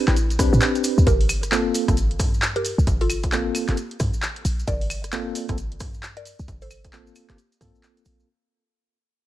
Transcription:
0.08 808-style bass A1, tine electric piano C4 D4 G4 B4, synth pluck C4 E4, cross-stick, clap, closed hi-hat, maracas
0.16 closed hi-hat, maracas
0.30 closed hi-hat, maracas
0.39 808-style bass D2, tine electric piano C4 D4 G4 B4, kick, cross-stick, open hi-hat, maracas
0.53 808-style bass A2, maracas
0.61 clap, maracas
0.75 closed hi-hat, maracas
0.84 open hi-hat, maracas
0.98 808-style bass D2, maracas
1.07 808-style bass G1, synth pluck G4 A#4, kick, closed hi-hat, maracas
1.21 open hi-hat
1.29 open hi-hat, claves, maracas
1.43 cross-stick, closed hi-hat, maracas
1.52 tine electric piano A#3 C4 F4 A4, clap, maracas
1.74 open hi-hat, maracas
1.88 808-style bass G1, tine electric piano A#3 C4 F4 A4, kick, cross-stick, closed hi-hat, maracas
1.97 closed hi-hat, maracas
2.11 closed hi-hat
2.19 808-style bass G2, kick, cross-stick, open hi-hat, maracas
2.34 maracas
2.42 clap, maracas
2.56 synth pluck G4 A#4, closed hi-hat
2.65 open hi-hat, maracas
2.78 808-style bass C2, maracas
2.87 808-style bass G1, kick, closed hi-hat, maracas
3.01 synth pluck F4 A4, open hi-hat
3.10 open hi-hat, claves, maracas
3.23 kick, cross-stick, closed hi-hat, maracas
3.32 tine electric piano A#3 C4 F4 A4, clap, maracas
3.55 open hi-hat, claves, maracas
3.68 808-style bass G1, synth pluck A#3 G4, tine electric piano A#3 C4 F4 A4, cross-stick, clap, closed hi-hat, maracas
3.77 closed hi-hat, maracas
3.91 closed hi-hat
4.00 808-style bass G2, kick, cross-stick, open hi-hat, maracas
4.14 maracas
4.22 clap, maracas
4.36 closed hi-hat
4.45 808-style bass A#1, open hi-hat, maracas
4.59 maracas
4.67 808-style bass G1, synth pluck A#4 D5, kick, closed hi-hat, maracas
4.81 open hi-hat
4.90 open hi-hat, claves, maracas
5.04 cross-stick, closed hi-hat, maracas
5.12 tine electric piano A#3 C4 F4 A4, clap, maracas
5.35 open hi-hat, maracas
5.49 808-style bass G1, tine electric piano A#3 C4 F4 A4, kick, cross-stick, closed hi-hat, maracas
5.58 closed hi-hat, maracas
5.72 closed hi-hat
5.80 808-style bass G2, kick, cross-stick, open hi-hat, maracas
5.94 maracas
6.03 clap, maracas
6.17 synth pluck A#4 D5, closed hi-hat
6.25 open hi-hat, maracas
6.39 808-style bass C2, maracas
6.48 808-style bass G1, kick, closed hi-hat, maracas
6.62 synth pluck A4 C5, open hi-hat, maracas
6.71 open hi-hat, claves, maracas
6.84 kick, cross-stick, closed hi-hat, maracas
6.93 tine electric piano A#3 C4 F4 A4, clap, maracas
7.07 maracas
7.16 open hi-hat, claves, maracas
7.30 808-style bass G1, tine electric piano A#3 C4 F4 A4, synth pluck A#3 G4, cross-stick, clap, closed hi-hat, maracas
7.38 closed hi-hat, maracas
7.52 closed hi-hat, maracas
7.61 808-style bass G2, tine electric piano A#3 C4 F4 A4, kick, cross-stick, open hi-hat, maracas
7.75 maracas
7.83 clap, maracas
7.97 closed hi-hat, maracas
8.05 808-style bass A#1, open hi-hat, maracas
8.20 maracas

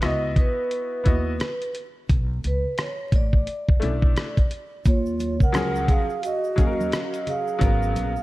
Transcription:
0.01 upright bass C#2, upright piano B3 E4 F#4 D#5, cross-stick, closed hi-hat
0.06 vibraphone D#5
0.36 vibraphone B4, kick, closed hi-hat
0.71 closed hi-hat
1.04 upright bass D#2, upright piano B3 E4 F#4 D#5, kick, closed hi-hat
1.40 cross-stick, closed hi-hat
1.62 closed hi-hat
1.75 closed hi-hat
2.09 upright bass B1, kick, closed hi-hat
2.44 upright bass C#2, vibraphone B4, closed hi-hat
2.78 vibraphone C#5, cross-stick, closed hi-hat
3.12 upright bass A1, vibraphone D5, kick, closed hi-hat
3.33 kick
3.47 closed hi-hat
3.69 kick
3.80 upright bass B1, upright piano A3 C#4 E4 D5, closed hi-hat
3.88 upright piano D4
4.02 kick
4.17 cross-stick, closed hi-hat
4.37 kick, closed hi-hat
4.51 closed hi-hat
4.85 upright bass D#2, flute F4, vibraphone C#5, kick, closed hi-hat, shaker
5.06 shaker
5.20 closed hi-hat, high conga, shaker
5.40 upright bass C2, flute A#4, vibraphone F#5, kick, shaker
5.52 upright bass C#2, upright piano F3 F#3 C#4, cross-stick, closed hi-hat, shaker
5.56 upright piano G#4
5.76 shaker
5.88 flute G#4, vibraphone F5, kick, closed hi-hat, low conga, shaker
6.10 shaker
6.23 flute F#4, vibraphone D#5, closed hi-hat, shaker
6.44 shaker
6.56 upright bass D#2, upright piano F#3 C#4 G#4 F5, kick, closed hi-hat, high conga, shaker
6.66 upright piano A#4
6.81 high conga, shaker
6.92 cross-stick, closed hi-hat, shaker
7.14 closed hi-hat, shaker
7.27 flute G#4, vibraphone F5, closed hi-hat, low conga, shaker
7.47 shaker
7.59 upright bass G#1, upright piano F#3 B3 C#4, kick, closed hi-hat, shaker
7.63 upright piano A#4
7.83 shaker
7.96 upright bass A#1, closed hi-hat, high conga, shaker
8.16 shaker

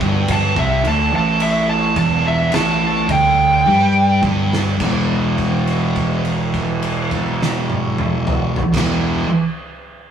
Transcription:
0.00 fingered electric bass G1, distorted electric guitar G2, kick
0.28 lead electric guitar A5, kick, crash
0.56 fingered electric bass C2, distorted electric guitar C3, lead electric guitar E5, kick
0.84 fingered electric bass D2, distorted electric guitar D3, lead electric guitar A5, crash
1.12 fingered electric bass A1, distorted electric guitar A2, lead electric guitar A5
1.40 lead electric guitar E5, crash
1.69 lead electric guitar A5
1.96 fingered electric bass E1, distorted electric guitar E2, lead electric guitar A5, kick, crash
2.27 lead electric guitar E5
2.52 fingered electric bass A1, distorted electric guitar A2, lead electric guitar A5, snare, crash
3.09 fingered electric bass D2, distorted electric guitar D3, lead electric guitar G5, kick, crash
3.66 fingered electric bass G2, distorted electric guitar G3, high tom
4.22 fingered electric bass G1, distorted electric guitar G2, kick
4.53 snare
4.79 fingered electric bass E1, distorted electric guitar E2 B2, kick, crash
4.83 distorted electric guitar E3
5.38 kick, crash
5.67 crash
5.96 kick, crash
6.25 crash
6.54 kick, crash
6.82 crash
7.11 kick, crash
7.42 snare
7.70 high tom
7.98 mid tom
8.27 mid tom
8.56 floor tom
8.72 fingered electric bass E1, distorted electric guitar E2 B2 E3, kick, crash
8.76 snare

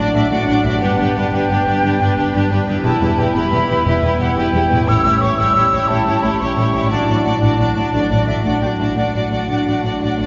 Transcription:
Already playing: harp A2 D4 F#4 D5, french horn section F#3 D4, viola section D4, violin section F#4, flute D5
0.00 violin section D5
0.13 double bass section A1, cello section A2, viola section D4, violin section F#4 D5, flute E5
0.30 double bass section A1, cello section A2, french horn section F#3 D4, viola section D4, violin section F#4 D5, flute F#5
0.47 double bass section A1, cello section A2, viola section D4, violin section F#4 D5
0.63 double bass section A1, harp G2, cello section A2, viola section D4, violin section F#4 D5, flute E5
0.68 harp D4
0.73 harp G4
0.77 double bass section G1, harp B4, flute F#5
0.81 cello section G2, french horn section G3 B3, viola section D4, violin section G4 B4
0.98 double bass section G1, cello section G2, viola section D4, violin section G4 B4
1.15 double bass section G1, cello section G2, viola section D4, violin section G4 B4
1.32 double bass section G1, cello section G2, french horn section G3 B3, viola section D4, violin section G4 B4, flute G5
1.49 double bass section G1, cello section G2, viola section D4, violin section G4 B4
1.66 double bass section G1, cello section G2, viola section D4, violin section G4 B4
1.82 double bass section G1, cello section G2, viola section D4, violin section G4 B4
2.00 double bass section G1, cello section G2, viola section D4, violin section G4 B4
2.17 double bass section G1, cello section G2, viola section D4, violin section G4 B4
2.34 double bass section G1, cello section G2, viola section D4, violin section G4 B4
2.51 double bass section G1, cello section G2, viola section D4, violin section G4 B4
2.67 double bass section G1, harp E2, cello section G2, viola section D4, violin section G4 B4
2.72 harp E4
2.76 harp G4
2.80 violin section G4, harp B4, flute A5
2.84 double bass section E1, cello section E2, french horn section G3 B3, viola section E4, violin section B4
3.01 double bass section E1, cello section E2, viola section E4, violin section G4 B4
3.18 double bass section E1, cello section E2, viola section E4, violin section G4 B4, flute G5
3.35 double bass section E1, cello section E2, french horn section G3 B3, viola section E4, violin section G4 B4, flute B5
3.51 double bass section E1, cello section E2, viola section E4, violin section G4 B4
3.68 double bass section E1, cello section E2, viola section E4, violin section G4 B4
3.85 double bass section E1, cello section E2, french horn section G3 B3, viola section E4, violin section G4 B4, flute E5
4.02 double bass section E1, cello section E2, viola section E4, violin section G4 B4
4.18 double bass section E1, cello section E2, viola section E4, violin section G4 B4, flute F#5
4.37 double bass section E1, cello section E2, french horn section G3 B3, viola section E4, violin section G4 B4, flute G5
4.53 double bass section E1, cello section E2, viola section E4, violin section G4 B4
4.69 double bass section E1, cello section E2, harp A2, viola section E4, violin section G4 B4
4.74 harp E4
4.79 harp G4
4.83 harp C#5
4.88 double bass section A1, cello section A2, french horn section G3 C#4, viola section E4, violin section G4 C#5, flute E6
5.05 double bass section A1, cello section A2, viola section E4, violin section G4 C#5
5.21 double bass section A1, cello section A2, viola section E4, violin section G4 C#5, flute C#6
5.38 double bass section A1, cello section A2, french horn section G3 C#4, viola section E4, violin section G4 C#5, flute E6
5.55 double bass section A1, cello section A2, viola section E4, violin section G4 C#5
5.73 double bass section A1, cello section A2, viola section E4, violin section G4 C#5
5.88 double bass section A1, cello section A2, french horn section G3 C#4, viola section E4, violin section G4 C#5, flute A5
6.06 double bass section A1, cello section A2, viola section E4, violin section G4 C#5
6.23 double bass section A1, cello section A2, viola section E4, violin section G4 C#5, flute B5
6.40 double bass section A1, cello section A2, french horn section G3 C#4, viola section E4, violin section G4 C#5, flute C#6
6.57 double bass section A1, cello section A2, viola section E4, violin section G4 C#5
6.73 double bass section A1, harp A2, cello section A2, viola section E4, violin section G4 C#5
6.78 harp D4
6.82 harp F#4
6.87 violin section F#4 D5, harp D5
6.91 double bass section A1, cello section A2, french horn section F#3 D4, viola section D4, flute A5
7.07 double bass section A1, cello section A2, viola section D4, violin section F#4 D5
7.24 double bass section A1, cello section A2, viola section D4, violin section F#4 D5, flute F#5
7.42 double bass section A1, cello section A2, french horn section F#3 D4, viola section D4, violin section F#4 D5, flute A5
7.59 double bass section A1, cello section A2, viola section D4, violin section F#4 D5
7.76 double bass section A1, cello section A2, viola section D4, violin section F#4 D5
7.93 double bass section A1, cello section A2, french horn section F#3 D4, viola section D4, violin section F#4 D5, flute D5
8.10 double bass section A1, cello section A2, viola section D4, violin section F#4 D5
8.27 double bass section A1, cello section A2, viola section D4, violin section F#4 D5, flute E5
8.45 double bass section A1, cello section A2, french horn section F#3 D4, viola section D4, violin section F#4 D5, flute F#5
8.61 double bass section A1, cello section A2, viola section D4, violin section F#4 D5, flute G5
8.78 double bass section A1, cello section A2, viola section D4, violin section F#4 D5, flute A5
8.96 double bass section A1, cello section A2, french horn section F#3 D4, viola section D4, violin section F#4 D5, flute F#5
9.14 double bass section A1, cello section A2, viola section D4, violin section F#4 D5
9.31 double bass section A1, cello section A2, viola section D4, violin section F#4 D5
9.49 double bass section A1, cello section A2, viola section D4, violin section F#4 D5
9.67 double bass section A1, cello section A2, viola section D4, violin section F#4 D5
9.84 double bass section A1, cello section A2, viola section D4, violin section F#4 D5
10.01 double bass section A1, cello section A2, viola section D4, violin section F#4 D5
10.18 double bass section A1, cello section A2, viola section D4, violin section F#4 D5

